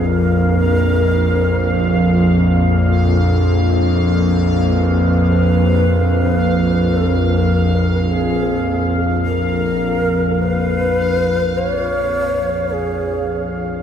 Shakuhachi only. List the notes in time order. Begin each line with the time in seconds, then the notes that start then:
0.06 A#4
4.67 B4
6.96 A4
7.09 A#4
8.12 G#4
9.26 A#4
10.42 B4
11.58 C5
11.69 C#5
12.73 G#4